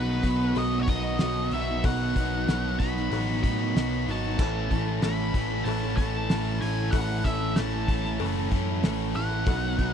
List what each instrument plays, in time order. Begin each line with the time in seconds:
Already playing: picked electric bass B1, distorted electric guitar B2 D#3 F#3 B3 F#4, overdriven electric guitar D#4, steel-string acoustic guitar D#4, lead electric guitar B4
0.23 picked electric bass B1, distorted electric guitar B2 D#3 F#3 B3 F#4, overdriven electric guitar D#4, kick, open hi-hat
0.55 picked electric bass B1, distorted electric guitar B2 D#3 F#3 B3 F#4, overdriven electric guitar D#4, lead electric guitar D#5, open hi-hat, cowbell
0.72 steel-string acoustic guitar B3 D#4 F#4
0.83 lead electric guitar C#5
0.87 picked electric bass B1, distorted electric guitar B2 D#3 F#3 B3 F#4, overdriven electric guitar D#4, steel-string acoustic guitar D#4, lead electric guitar D#5, kick, open hi-hat
1.19 picked electric bass B1, distorted electric guitar B2 D#3 F#3, overdriven electric guitar D#4, steel-string acoustic guitar D#4, snare, open hi-hat, cowbell
1.24 distorted electric guitar B3 F#4
1.51 picked electric bass B1, steel-string acoustic guitar F#3 D#4, overdriven electric guitar D#4, lead electric guitar E5, open hi-hat
1.55 distorted electric guitar B2 D#3 F#3 B3 F#4
1.68 steel-string acoustic guitar B3 D#4 F#4
1.84 picked electric bass B1, distorted electric guitar B2 D#3 F#3 B3 F#4, overdriven electric guitar D#4, steel-string acoustic guitar D#4, lead electric guitar F#5, kick, open hi-hat, cowbell
2.15 picked electric bass B1, distorted electric guitar B2 D#3 F#3 B3 F#4, overdriven electric guitar D#4, kick, open hi-hat
2.20 steel-string acoustic guitar D#4
2.33 steel-string acoustic guitar B3 D#4 F#4
2.47 picked electric bass B1, distorted electric guitar B2 D#3 F#3 B3 F#4, overdriven electric guitar D#4, steel-string acoustic guitar D#4, snare, open hi-hat, cowbell
2.79 picked electric bass B1, distorted electric guitar B2 D#3 F#3 B3 F#4, overdriven electric guitar D#4, lead electric guitar B5, kick, open hi-hat
2.96 steel-string acoustic guitar B3 D#4 F#4, snare
3.11 picked electric bass A1, distorted electric guitar B2 D#3 F#3 B3 F#4, overdriven electric guitar D#4, open hi-hat, cowbell
3.29 steel-string acoustic guitar B3 D#4 F#4
3.43 picked electric bass A2, distorted electric guitar B2 D#3 F#3 B3 F#4, overdriven electric guitar D#4, steel-string acoustic guitar D#4, lead electric guitar B5, kick, open hi-hat
3.61 steel-string acoustic guitar B3 D#4 F#4
3.75 picked electric bass B1, distorted electric guitar B2 D#3 F#3 B3 F#4, overdriven electric guitar D#4, steel-string acoustic guitar D#4, snare, open hi-hat, cowbell
4.07 picked electric bass G#1, distorted electric guitar B2 D#3 F#3 B3 F#4, overdriven electric guitar D#4, steel-string acoustic guitar D#4, lead electric guitar A5, open hi-hat
4.24 steel-string acoustic guitar B3 D#4 F#4
4.39 picked electric bass A1, distorted electric guitar A2 E3 A3 C#4 E4, overdriven electric guitar A4, steel-string acoustic guitar A4, kick, crash, cowbell
4.68 picked electric bass A1, overdriven electric guitar A2 A4, kick, open hi-hat
4.72 distorted electric guitar A2 E3 A3 C#4 E4, steel-string acoustic guitar A4
4.87 steel-string acoustic guitar A3 C#4 A4
5.02 picked electric bass A1, distorted electric guitar A2 E3 A3 C#4 E4, overdriven electric guitar A4, steel-string acoustic guitar A4, lead electric guitar B5, snare, open hi-hat, cowbell
5.34 picked electric bass A1, distorted electric guitar A2 E3 A3 C#4 E4, overdriven electric guitar A4, kick, open hi-hat
5.51 steel-string acoustic guitar A3 C#4 A4
5.64 picked electric bass A1, distorted electric guitar A2 E3, overdriven electric guitar A4, lead electric guitar A5, open hi-hat, cowbell
5.68 distorted electric guitar A3 C#4 E4
5.83 steel-string acoustic guitar A3 C#4 A4
5.97 picked electric bass A1, distorted electric guitar A2 E3, overdriven electric guitar A4, lead electric guitar A5, kick, open hi-hat
6.02 distorted electric guitar A3 C#4 E4, steel-string acoustic guitar A4
6.15 steel-string acoustic guitar A3 C#4 A4
6.30 picked electric bass A1, distorted electric guitar A2 E3 A3 C#4 E4, overdriven electric guitar A4, steel-string acoustic guitar A4, snare, open hi-hat, cowbell
6.61 picked electric bass A1, distorted electric guitar A2 E3 A3 C#4 E4, overdriven electric guitar A4, steel-string acoustic guitar A4, lead electric guitar G#5, open hi-hat
6.78 steel-string acoustic guitar A3 C#4 A4
6.91 picked electric bass A1, distorted electric guitar A2 E3 A3 C#4 E4, steel-string acoustic guitar A4, lead electric guitar F#5, kick, open hi-hat, cowbell
6.96 overdriven electric guitar A4
7.24 picked electric bass A1, distorted electric guitar A2 E3 A3 C#4 E4, overdriven electric guitar A4, steel-string acoustic guitar A4, lead electric guitar E5, kick, open hi-hat
7.41 steel-string acoustic guitar A3 C#4 A4
7.56 picked electric bass A1, distorted electric guitar A2 E3 A3 C#4 E4, overdriven electric guitar A4, steel-string acoustic guitar A4, lead electric guitar A5, snare, open hi-hat, cowbell
7.88 picked electric bass A1, distorted electric guitar A2 E3 A3 C#4 E4, overdriven electric guitar A4, kick, open hi-hat
8.04 steel-string acoustic guitar A3 C#4 A4, snare
8.19 picked electric bass F#1, distorted electric guitar A2 E3 A3 C#4 E4, overdriven electric guitar A4, open hi-hat, cowbell
8.36 steel-string acoustic guitar A3 C#4 A4
8.51 picked electric bass F#2, distorted electric guitar A2 E3 A3 C#4 E4, overdriven electric guitar A4, steel-string acoustic guitar A4, kick, open hi-hat
8.68 steel-string acoustic guitar A3 C#4 A4
8.83 picked electric bass A1, distorted electric guitar A2 E3 A3 C#4 E4, steel-string acoustic guitar A4, overdriven electric guitar A4, snare, open hi-hat, cowbell
9.15 picked electric bass A1, distorted electric guitar A2 E3 A3 C#4 E4, steel-string acoustic guitar A4, overdriven electric guitar A4, lead electric guitar F#5, open hi-hat
9.30 steel-string acoustic guitar A3 C#4 A4
9.46 picked electric bass B1, distorted electric guitar B2 D#3 F#3 B3 D#4, steel-string acoustic guitar F#4, overdriven electric guitar F#4, kick, open hi-hat, cowbell
9.78 picked electric bass B1, distorted electric guitar B2 D#3 F#3 B3 D#4, overdriven electric guitar F#4, steel-string acoustic guitar F#4, kick, open hi-hat